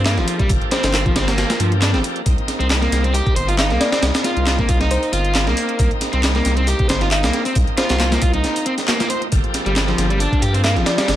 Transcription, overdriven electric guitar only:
0.06 A#3
0.18 F3
0.39 G3
0.72 C4
1.06 F3
1.16 C4
1.28 A#3
1.60 F3
1.82 D4
1.94 C4
2.60 C4
2.82 A#3
3.04 C4
3.14 G4
3.36 C5
3.48 F4
3.58 D#4
3.71 A#3
3.92 C4
4.24 F4
4.59 A#3
4.69 F4
4.81 D#4
5.13 F4
5.47 A#3
6.13 C4
6.35 A#3
6.57 C4
6.67 G4
6.89 C5
7.01 F4
7.11 D#4
7.23 A#3
7.46 C4
7.78 F4
8.12 A#3
8.22 F4
8.34 D#4
8.66 C4
8.88 A#3
9.00 A#3
9.10 C5
9.66 G3
9.88 F3
10.10 G3
10.20 D4
10.42 G4
10.54 C4
10.64 A#3
10.76 F3
10.98 G3

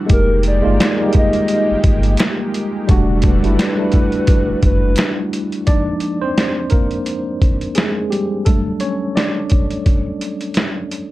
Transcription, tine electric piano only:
Already playing: G3 A3 D4 E4
0.06 G#3 A#3 D#4 G4
0.62 G#3 A#3 D#4 F4
1.01 G3 A#3 D#4 G4
1.08 G#3
2.87 G3 A3 D4 F#4
3.42 G3 A3 D4 E4
3.77 G3 A3 D4 E4
5.67 F3 G#3 A#3 D4 D#4 D5
6.21 C4 C5
6.70 A#3 A#4
7.75 G#3 G#4
8.10 G3 G4
8.45 F#3 G3 A3 D4 A4
8.81 C#4 C#5
9.16 D4 D5

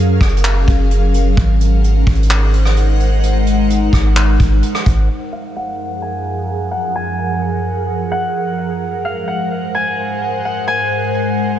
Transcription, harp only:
5.32 F5
5.56 F#5
6.02 G#5
6.71 F#5
6.95 G#5
8.12 F#5
9.05 F5
9.28 F#5
9.75 G#5
10.45 F#5
10.68 G#5

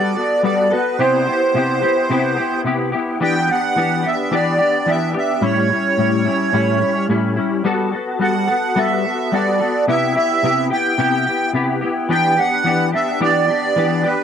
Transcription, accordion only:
Already playing: D5
0.43 D5
0.71 B4
0.99 C5
3.23 G5
3.51 F#5
4.07 E5
4.34 D5
4.90 E5
5.18 E5
5.45 C#5
8.23 F#5
8.78 E5
9.33 D5
9.88 E5
10.17 E5
10.73 G5
12.12 G5
12.39 F#5
12.95 E5
13.23 D5
14.05 B4

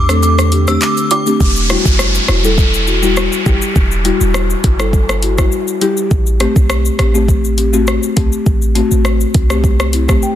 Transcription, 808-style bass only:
Already playing: E2
1.40 E1
1.85 F#1
2.29 E1
3.46 G1
3.76 E1
4.21 E1
4.64 G1
6.11 A1
6.56 B1
6.99 A1
8.17 C2
8.46 A1
8.91 A1
9.35 C2

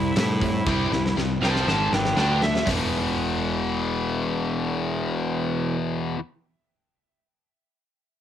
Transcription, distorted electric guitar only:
Already playing: C3 G3
0.16 C3 G3
0.42 C3 G3
0.67 C3 G3 C4
0.92 C3 G3
1.17 C3 G3
1.42 C3 G3 C4
1.67 G#2 D#3 G#3
1.93 G#2 D#3
2.16 D3 A3 D4
2.41 D3 A3
2.66 E2 B2
2.70 E3

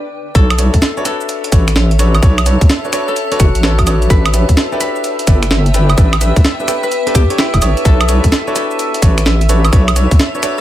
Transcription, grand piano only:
0.35 D4 F#4 A4 B4 C#5
0.58 D4 F#4 A4 B4 C#5
0.97 D4 F#4 A4 B4 C#5
1.05 D4 F#4 A4 B4 C#5
1.52 D4 F#4 A4 B4 C#5
1.99 D4 F#4 A4 B4 C#5
2.23 D4 F#4 A4 B4 C#5
2.46 D4 F#4 A4 B4 C#5
2.85 D4 F#4 A4 B4 C#5
2.93 D4 F#4 A4 B4 C#5
3.32 D4 F#4 A4 B4 C#5
3.63 D4 F#4 A4 B4 C#5
3.87 D4 F#4 A4 B4 C#5
4.10 D4 E4 G4 A4 B4
4.33 D4 E4 G4 A4 B4
4.72 D4 E4 G4 A4 B4
4.80 D4 E4 G4 A4 B4
5.27 D4 E4 G4 A4 B4
5.74 D4 E4 G4 A4 B4
5.98 D4 E4 G4 A4 B4
6.21 D4 E4 G4 A4 B4
6.60 D4 E4 G4 A4 B4
6.68 D4 E4 G4 A4 B4
7.07 D4 E4 G4 A4 B4
7.30 D4 E4 G4 A4 C#5
7.62 D4 E4 G4 A4 C#5
7.85 D4 F#4 A4 B4 C#5
8.09 D4 F#4 A4 B4 C#5
8.47 D4 F#4 A4 B4 C#5
8.55 D4 F#4 A4 B4 C#5
9.02 D4 F#4 A4 B4 C#5
9.49 D4 F#4 A4 B4 C#5
9.73 D4 F#4 A4 B4 C#5
9.96 D4 F#4 A4 B4 C#5
10.35 D4 F#4 A4 B4 C#5
10.43 D4 F#4 A4 B4 C#5

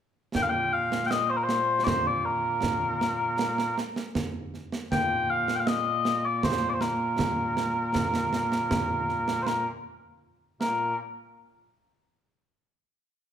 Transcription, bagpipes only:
0.35 A#2 A#3 G5
0.42 F5
0.49 G5
0.73 F5
1.06 D#5 G5
1.30 C5
1.37 A#4
1.43 C5
1.84 C5 D5
2.07 D5
2.25 A#4
4.91 A#2 A#3 G5
5.30 F5
5.56 G5
5.60 F5
5.67 D#5
6.25 D5
6.36 D5
6.44 C5
6.69 D5
6.74 C5
6.81 A#4
9.43 C5
9.47 A#4
10.61 A#2 A#3 A#4

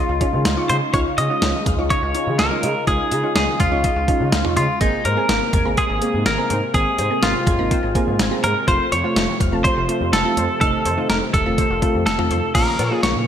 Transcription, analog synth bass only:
0.09 C#2
0.33 C#3
0.45 C#2
0.69 C#3
0.94 C#2
1.18 C#3
1.42 C#2
1.66 C#2
1.78 C#2
2.03 C#2
2.27 C#3
2.39 C#2
2.63 C#3
2.87 C#2
3.12 C#3
3.36 C#2
3.60 C#2
3.72 C#2
3.96 C#2
4.20 C#3
4.32 C#2
4.57 C#3
4.81 G#1
5.05 G#2
5.29 G#1
5.53 G#1
5.65 G#1
5.90 G#1
6.14 G#2
6.26 G#1
6.50 G#2
6.74 G#1
6.98 G#2
7.23 G#1
7.47 G#1
7.59 G#1
7.83 G#1
8.07 G#2
8.19 G#1
8.44 G#2
8.68 F1
8.92 F2
9.16 F1
9.40 F1
9.52 F1
9.77 F1
10.01 F2
10.13 F1
10.37 F2
10.61 F1
10.85 F2
11.10 F1
11.34 F1
11.46 F1
11.70 F1
11.94 F2
12.06 F1
12.30 F2
12.55 A#1
12.79 A#2
13.03 A#1
13.15 A#2

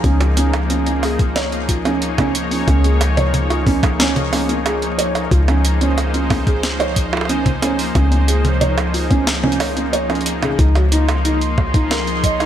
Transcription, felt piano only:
0.04 C#4
0.37 C#4
0.70 C#4
0.86 C#4
1.03 G#4
1.36 C#5
1.69 F4
1.85 C#4
2.18 C#4
2.51 C#4
2.68 C#4
2.84 G#4
3.17 C#5
3.50 F4
3.67 C#4
3.99 C#4
4.32 C#4
4.49 C#4
4.65 G#4
4.98 C#5
5.31 F4
5.48 C#4
5.81 C#4
6.14 C#4
6.30 C#4
6.47 G#4
6.80 C#5
7.13 F4
7.29 C#4
7.62 C#4
7.95 C#4
8.12 C#4
8.28 G#4
8.61 C#5
8.94 F4
9.10 C#4
9.43 C#4
9.60 C#5
9.76 C#4
9.93 C#5
10.09 C#4
10.42 C#3
10.59 D#4
10.75 F#4
10.92 D#4
11.25 D#4
11.74 D#4
11.91 A#4
12.24 D#5
12.40 D#4

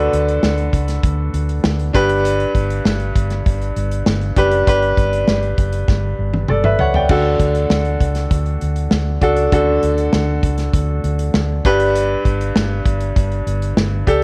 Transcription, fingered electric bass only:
0.13 D2
0.43 D2
0.73 C#2
1.03 D2
1.34 D2
1.64 D2
1.94 G1
2.55 G1
2.85 G1
3.16 G1
3.46 G1
3.76 G1
4.07 G1
4.37 F#1
4.68 G1
4.98 G1
5.28 G1
5.58 F#1
5.88 G1
6.19 G1
6.49 G1
6.80 C#2
7.10 D2
7.40 D2
7.70 D2
8.01 C#2
8.31 D2
8.62 D2
8.92 D2
9.22 C#2
9.52 D2
9.83 D2
10.14 D2
10.43 C#2
10.74 D2
11.04 D2
11.35 D2
11.65 G1
12.25 G1
12.56 G1
12.86 G1
13.17 G1
13.46 G1
13.77 G1
14.07 C#2

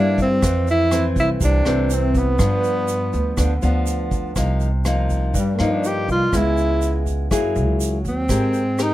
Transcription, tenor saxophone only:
Already playing: D4
0.22 C4
0.70 E4
1.20 E4
1.44 D4
1.93 C4
2.18 B3
5.38 G3
5.55 A#3
5.71 D4
5.87 G4
6.11 F4
6.36 E4
8.08 C4
8.82 D#4

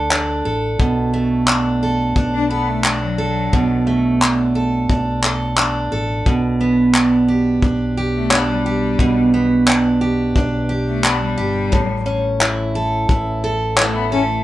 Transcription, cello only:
2.34 D4
2.51 B3
2.68 A3
3.02 F#3
8.16 A3
8.33 B3
8.50 G3
10.88 A3
11.05 B3
11.22 G3
13.79 A3
13.95 B3
14.13 C#4
14.29 A3

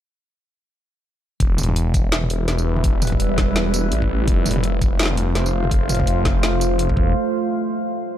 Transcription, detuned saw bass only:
1.40 E1
2.48 E1
2.84 E1
3.92 A1
4.28 F1
5.35 F1
5.71 F1
6.97 E1

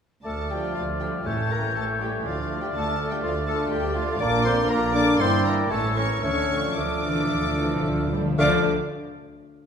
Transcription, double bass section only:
0.25 D2
0.76 D2
1.26 A1
1.76 A1
2.25 D2
2.74 D2
3.23 D2
3.72 D2
4.21 A#1
4.71 A#1
5.20 G1
5.71 A1
6.24 D2
6.78 D2
7.31 D2
7.86 D2
8.39 D2

